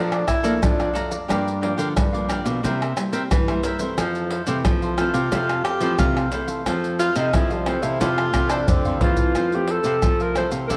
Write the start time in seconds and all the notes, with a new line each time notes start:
Already playing: A#2 F3 A3 D4 F5 A#5
0.11 D5 F5 A#5, pandeiro, tamborim, maracas
0.27 E4, pandeiro, tamborim, maracas, surdo
0.43 F3 A3 A#3 D4 A4 D5 F5 A#5, pandeiro, maracas
0.62 F2 F3 D4, pandeiro, tamborim, maracas, surdo
0.79 D5 F5 A#5, pandeiro, tamborim, maracas
0.93 F3 A3 D4 A4 D5 F5 A#5, pandeiro, maracas
1.10 D5 F5 A#5, pandeiro, maracas
1.28 G2 F3 A#3 D4 G4 A#4 D5 F5, pandeiro, tamborim, maracas, surdo
1.48 pandeiro, maracas
1.61 F3 A#3 D4 G4 A#4 D5 F5, pandeiro
1.77 D3 G4 A#4 D5 F5, pandeiro, maracas
1.96 G2 D3, pandeiro, tamborim, maracas, surdo
2.13 F3 A#3 D4 A#4 D5 F5, pandeiro, maracas
2.29 G4 A#4 D5 F5, pandeiro, tamborim, maracas
2.44 B2 A#4 D5 F5, pandeiro, maracas
2.63 C3 G3 A#3 E4 A#4 C5 E5, pandeiro, maracas, surdo
2.80 A#4 C5 E5, pandeiro, tamborim, maracas
2.97 G3 A#3 E4, pandeiro, tamborim, maracas
3.12 C4 E4 A#4 C5 E5, pandeiro, maracas
3.31 G2 E3, pandeiro, tamborim, maracas, surdo
3.48 G3 A#3 E4 A#4 C5 E5, pandeiro, tamborim, maracas
3.63 E4 A#4 C5 E5, pandeiro, maracas
3.79 E3 A3 C4 A#4 C5 E5, pandeiro, maracas
3.98 F2 F3 A4 C5 F5, pandeiro, tamborim, maracas, surdo
4.15 pandeiro, maracas
4.30 E4 A4 C5 F5, pandeiro
4.46 C3 E3 A3 C4 E4 A4 C5 F5, pandeiro, maracas
4.65 C3 F3, pandeiro, tamborim, maracas, surdo
4.82 A4 C5 F5, pandeiro, maracas
4.98 E3 A3 C4 E4 F4 A4 C5 F5, pandeiro, tamborim, maracas
5.14 C3 A4 C5 F5, pandeiro, maracas
5.32 F2 C3 A3 C4 E4 A4 C5 F5, pandeiro, maracas, surdo
5.49 A4 C5 F5, pandeiro, tamborim, maracas
5.64 G4, pandeiro, tamborim
5.80 E3 F3 A3 C4 E4 A4 C5 F5, pandeiro, maracas
5.99 C3 F4, pandeiro, tamborim, maracas, surdo
6.17 A4 C5 F5, pandeiro, tamborim, maracas
6.31 E3 A3 C4 E4 A4 C5 F5, pandeiro, maracas
6.47 A4 C5 F5, pandeiro, maracas
6.66 F2 F3 A3 C4 A4 C5 F5, pandeiro, tamborim, maracas, surdo
6.84 pandeiro, maracas
6.99 E4 F4 A4 C5 F5, pandeiro, maracas
7.15 C3 D#4 E4 A4 C5 F5, pandeiro, maracas
7.33 C3 E3 F3 A3 C4 E4, pandeiro, tamborim, maracas, surdo
7.50 G3 A4 C5 F5, pandeiro, maracas
7.66 E3 A3 C4 E4 A4 C5 F5, pandeiro, tamborim
7.82 C3 E4 A4 C5 F5, pandeiro, maracas
8.01 F2 C3 E4 F4 A4 C5 F5, pandeiro, maracas, surdo
8.18 A4 C5 F5, pandeiro, tamborim, maracas
8.33 C3 E3 A3 C4, pandeiro, tamborim, maracas, surdo
8.49 D4 E4 A4 C5 F5, pandeiro, tamborim, maracas
8.68 C3 D3 C4, surdo, pandeiro, maracas
8.85 E3 A3 C4 A4 C5 F5, surdo, pandeiro, maracas
9.01 E3 E4 F4 A4 C5 F5, pandeiro, surdo
9.17 A4 C5 F5, pandeiro, maracas, surdo
9.35 F2 E3 F3 A3 C4 A4 C5 F5, pandeiro, tamborim, maracas, surdo
9.52 A3 C4 G4, pandeiro, maracas
9.68 E4 A4 C5 F5, pandeiro
9.84 C3 E4 A4 C5 F5, pandeiro, maracas
10.02 C3 E3 F3 A3 C4, pandeiro, tamborim, maracas, surdo
10.20 A4 A#4 C5 F5, pandeiro, maracas
10.36 E3 A3 C4 E4 A4 C5 F5, pandeiro, tamborim, maracas
10.51 C3 A4 C5 F5, pandeiro, maracas
10.67 C3 E4 A4 A#4, pandeiro, maracas, surdo
10.71 F2 A4 C5 F5